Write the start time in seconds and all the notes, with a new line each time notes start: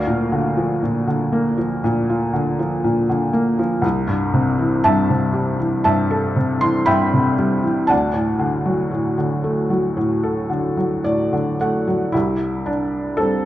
Already playing: D2 A#4 D5 F5
0.07 A#2
0.32 D3
0.57 F3
0.83 A#2
1.07 D3
1.32 A#3
1.58 F3
1.84 A#2
2.10 F4
2.33 D3
2.59 F3
2.84 A#2
3.09 D3
3.33 A#3
3.59 F3
3.82 C2
4.08 G2
4.34 C3
4.59 E3
4.84 G2 E5 A5
5.10 C3
5.34 G3
5.59 E3
5.84 G2 E5 A5
6.11 A4
6.36 C3
6.61 E3 C6
6.86 G2 E5 G5 B5
7.14 C3
7.39 G3
7.64 E3
7.87 D2 D5 F#5 A5
8.14 A2
8.39 D3
8.66 F#3
8.91 A2
9.18 D3
9.44 A3
9.70 F#3
9.97 A2
10.24 A4
10.50 D3
10.77 F#3
11.04 A2 D5
11.33 D3
11.61 A3 F#5
11.87 F#3
12.12 C2 G3 E4
12.66 D4
13.17 G3 C4 D4 A4